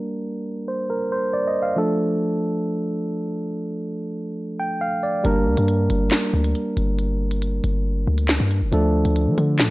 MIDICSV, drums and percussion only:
0, 0, Header, 1, 2, 480
1, 0, Start_track
1, 0, Key_signature, -2, "minor"
1, 0, Tempo, 434783
1, 34, Time_signature, 4, 2, 24, 8
1, 10712, End_track
2, 0, Start_track
2, 0, Title_t, "Drums"
2, 5793, Note_on_c, 9, 42, 74
2, 5904, Note_off_c, 9, 42, 0
2, 6152, Note_on_c, 9, 42, 84
2, 6263, Note_off_c, 9, 42, 0
2, 6273, Note_on_c, 9, 42, 81
2, 6384, Note_off_c, 9, 42, 0
2, 6513, Note_on_c, 9, 42, 83
2, 6624, Note_off_c, 9, 42, 0
2, 6749, Note_on_c, 9, 39, 90
2, 6753, Note_on_c, 9, 38, 117
2, 6859, Note_off_c, 9, 39, 0
2, 6863, Note_off_c, 9, 38, 0
2, 7114, Note_on_c, 9, 42, 79
2, 7224, Note_off_c, 9, 42, 0
2, 7233, Note_on_c, 9, 42, 46
2, 7343, Note_off_c, 9, 42, 0
2, 7474, Note_on_c, 9, 42, 74
2, 7584, Note_off_c, 9, 42, 0
2, 7713, Note_on_c, 9, 42, 77
2, 7823, Note_off_c, 9, 42, 0
2, 8072, Note_on_c, 9, 42, 83
2, 8183, Note_off_c, 9, 42, 0
2, 8192, Note_on_c, 9, 42, 76
2, 8303, Note_off_c, 9, 42, 0
2, 8433, Note_on_c, 9, 42, 80
2, 8544, Note_off_c, 9, 42, 0
2, 9030, Note_on_c, 9, 42, 73
2, 9140, Note_off_c, 9, 42, 0
2, 9148, Note_on_c, 9, 39, 92
2, 9152, Note_on_c, 9, 38, 111
2, 9152, Note_on_c, 9, 42, 67
2, 9258, Note_off_c, 9, 39, 0
2, 9262, Note_off_c, 9, 38, 0
2, 9263, Note_off_c, 9, 42, 0
2, 9393, Note_on_c, 9, 42, 76
2, 9504, Note_off_c, 9, 42, 0
2, 9633, Note_on_c, 9, 42, 74
2, 9743, Note_off_c, 9, 42, 0
2, 9992, Note_on_c, 9, 42, 78
2, 10102, Note_off_c, 9, 42, 0
2, 10113, Note_on_c, 9, 42, 77
2, 10223, Note_off_c, 9, 42, 0
2, 10354, Note_on_c, 9, 42, 83
2, 10464, Note_off_c, 9, 42, 0
2, 10589, Note_on_c, 9, 39, 89
2, 10593, Note_on_c, 9, 38, 114
2, 10700, Note_off_c, 9, 39, 0
2, 10703, Note_off_c, 9, 38, 0
2, 10712, End_track
0, 0, End_of_file